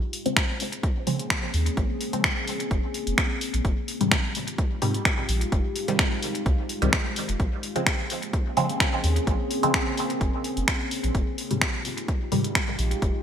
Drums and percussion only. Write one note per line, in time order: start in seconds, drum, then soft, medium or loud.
0.13 open hi-hat medium
0.26 closed hi-hat soft
0.37 finger snap medium
0.37 kick loud
0.37 closed hi-hat soft
0.60 open hi-hat medium
0.73 closed hi-hat soft
0.83 kick loud
0.83 closed hi-hat soft
1.07 open hi-hat medium
1.19 closed hi-hat soft
1.30 finger snap medium
1.30 kick loud
1.30 closed hi-hat soft
1.54 open hi-hat medium
1.66 closed hi-hat soft
1.77 kick loud
1.77 closed hi-hat soft
2.01 open hi-hat medium
2.13 closed hi-hat soft
2.24 finger snap medium
2.24 kick loud
2.24 closed hi-hat soft
2.48 open hi-hat medium
2.60 closed hi-hat soft
2.71 kick loud
2.71 closed hi-hat soft
2.94 open hi-hat medium
3.07 closed hi-hat soft
3.18 finger snap medium
3.18 kick loud
3.18 closed hi-hat soft
3.41 open hi-hat medium
3.54 closed hi-hat soft
3.65 kick loud
3.65 closed hi-hat soft
3.88 open hi-hat medium
4.01 closed hi-hat soft
4.12 finger snap medium
4.12 kick loud
4.12 closed hi-hat soft
4.35 open hi-hat medium
4.48 closed hi-hat soft
4.58 kick loud
4.58 closed hi-hat soft
4.82 open hi-hat medium
4.94 closed hi-hat soft
5.05 finger snap medium
5.05 kick loud
5.05 closed hi-hat soft
5.29 open hi-hat medium
5.41 closed hi-hat soft
5.52 kick loud
5.52 closed hi-hat soft
5.76 open hi-hat medium
5.88 closed hi-hat soft
5.99 finger snap medium
5.99 kick loud
5.99 closed hi-hat soft
6.22 open hi-hat medium
6.35 closed hi-hat soft
6.46 kick loud
6.46 closed hi-hat soft
6.69 open hi-hat medium
6.82 closed hi-hat soft
6.93 finger snap medium
6.93 kick loud
6.93 closed hi-hat soft
7.16 open hi-hat medium
7.29 closed hi-hat soft
7.40 kick loud
7.40 closed hi-hat soft
7.63 open hi-hat medium
7.76 closed hi-hat soft
7.87 finger snap medium
7.87 kick loud
7.87 closed hi-hat soft
8.10 open hi-hat medium
8.23 closed hi-hat soft
8.33 kick loud
8.33 closed hi-hat soft
8.57 open hi-hat medium
8.69 closed hi-hat soft
8.80 finger snap medium
8.80 kick loud
8.80 closed hi-hat soft
9.04 open hi-hat medium
9.16 closed hi-hat soft
9.27 kick loud
9.27 closed hi-hat soft
9.51 open hi-hat medium
9.63 closed hi-hat soft
9.74 finger snap medium
9.74 kick loud
9.74 closed hi-hat soft
9.97 open hi-hat medium
10.10 closed hi-hat soft
10.21 kick loud
10.21 closed hi-hat soft
10.44 open hi-hat medium
10.57 closed hi-hat soft
10.68 finger snap medium
10.68 kick loud
10.68 closed hi-hat soft
10.91 open hi-hat medium
11.04 closed hi-hat soft
11.15 kick loud
11.15 closed hi-hat soft
11.38 open hi-hat medium
11.51 closed hi-hat soft
11.62 finger snap medium
11.62 kick loud
11.62 closed hi-hat soft
11.85 open hi-hat medium
11.98 closed hi-hat soft
12.08 kick loud
12.08 closed hi-hat soft
12.32 open hi-hat medium
12.44 closed hi-hat soft
12.55 finger snap medium
12.55 kick loud
12.55 closed hi-hat soft
12.79 open hi-hat medium
12.91 closed hi-hat soft
13.02 kick loud
13.02 closed hi-hat soft